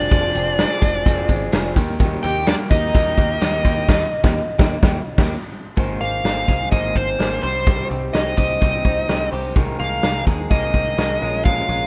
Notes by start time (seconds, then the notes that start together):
Already playing: G#3 C4 D4 F4 G#4 D5
0.11 F1 F3 C4 F4 G#4, kick, hi-hat pedal, ride
0.34 F1 C4 F4 G#4, ride, tambourine
0.58 F3 G#3 C4 F4 G#4, snare, ride, tambourine
0.82 F1 C4 F4 G#4, kick, ride, tambourine
1.06 F1 F3 C4 F4 G#4, kick, ride, tambourine
1.29 G#1 G#3 C4 F4 G#4, kick, ride, tambourine
1.52 F1 F3 C4 F4 G#4, snare, ride, tambourine
1.76 D#2 D#3 A#3 D#4 G4, kick, open hi-hat, ride, tambourine
1.99 D#3 G3 A#3 D#4 G4, kick, hi-hat pedal, ride, tambourine
2.23 D#2 A#3 D#4 G4 G5, ride, tambourine
2.47 G3 A#3 D4 D#4 G4 D5, snare, ride, tambourine
2.71 D#2 A#3 D#4 G4 D#5, kick, ride, tambourine
2.94 D#2 D#3 G3 A#3 D#4 G4, kick, ride, tambourine
3.18 D#2 A#3 D#4 G4, kick, ride, tambourine
3.42 D#2 G3 A#3 D#4 G4, snare, ride, tambourine
3.65 D#2 A#3 D#4 G4, kick, open hi-hat, ride, tambourine
3.88 D#2 D#3 G3 A#3 D#4 G4, kick, snare, crash
4.24 D#2 A#3 D#4 G4, kick, snare
4.58 D#2 A#3 D#4 G4, kick, snare
4.83 D#2 D#3 G3 A#3 D#4 G4, kick, snare
5.18 D#2 A#3 D#4 G4, kick, snare, crash
5.77 G#1 D#3 G#3 A#3 D#4 G#4 C5, kick, closed hi-hat
6.01 G#1 A#3 D#4 G#4 C5 F5, closed hi-hat
6.24 G#1 A#3 C4 D#4 G#4 C5, snare, closed hi-hat
6.48 C2 D#4 G#4 C5, kick, snare, closed hi-hat
6.71 G#1 G#3 A#3 D#4 G#4 C5 D#5, kick, closed hi-hat
6.95 G#1 C4 D#4 G#4 C5, kick, closed hi-hat
7.19 G#1 A#3 D#4 G#4 C5, snare, closed hi-hat
7.43 C2 G3 C4 D#4 G4 C5, open hi-hat
7.67 C3 G3 C4 D#4 G4 C5, kick, closed hi-hat
7.90 C2 C4 D#4 G4 C5, closed hi-hat
8.13 C2 C4 C#4 D#4 G4 C5 D#5, snare, closed hi-hat
8.26 D#4
8.37 C2 C4 D#4 G4 C5 D#5, kick, closed hi-hat
8.60 C2 C3 G3 C4 D#4 G4 C5, kick, closed hi-hat
8.85 C2 C4 D#4 G4 C5, kick, closed hi-hat
9.08 C2 C4 D#4 G4 C5, snare, closed hi-hat
9.32 C2 C4 D#4 G4 C5, open hi-hat
9.55 C2 C3 D#3 G#3 D#4 G#4 A#4, kick, closed hi-hat
9.79 C2 G#3 A#3 D#4 G#4 A#4 F5, closed hi-hat
10.03 C2 G#3 C4 D#4 G#4 A#4, snare, closed hi-hat
10.26 D#2 G#3 D#4 G#4 A#4, kick, snare, closed hi-hat
10.50 C2 C3 D#3 G#3 A#3 D#4 G#4 A#4 D#5, kick, closed hi-hat
10.74 C2 G#3 C4 D#4 G#4 A#4, kick, closed hi-hat
10.97 C2 G#3 A#3 D#4 G#4 A#4, snare, closed hi-hat
11.21 A#1 G#3 C#4 F4 A#4, open hi-hat
11.45 A#2 F3 G#3 C#4 F4 A#4 F5, kick, closed hi-hat
11.68 A#1 G#3 C#4 F4 A#4, closed hi-hat